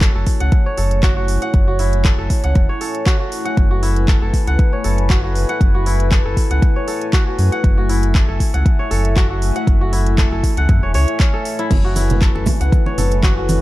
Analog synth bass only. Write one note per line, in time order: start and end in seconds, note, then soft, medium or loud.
0.00 0.11 F#1 loud
0.15 0.25 F#1 medium
0.41 0.50 C#2 medium
0.78 1.39 F#1 medium
1.54 2.15 F#1 loud
2.18 2.28 F#1 medium
2.44 2.54 C#2 medium
2.55 2.67 E1 medium
3.57 4.18 F#1 loud
4.22 4.32 F#1 medium
4.48 4.57 C#2 medium
4.85 5.45 F#1 medium
5.61 6.21 F#1 loud
6.25 6.35 F#1 medium
6.51 6.60 C#2 medium
7.39 7.50 F#2 medium
7.64 8.25 F#1 loud
8.29 8.38 F#1 medium
8.54 8.64 C#2 medium
8.91 9.52 F#1 medium
9.67 10.28 F#1 loud
10.32 10.42 F#1 medium
10.57 10.67 C#2 medium
10.69 10.80 F#2 loud
10.83 10.96 E1 medium
10.94 11.06 C#2 loud
11.71 12.32 F#1 loud
12.35 12.45 F#1 medium
12.61 12.70 C#2 medium
12.98 13.59 F#1 medium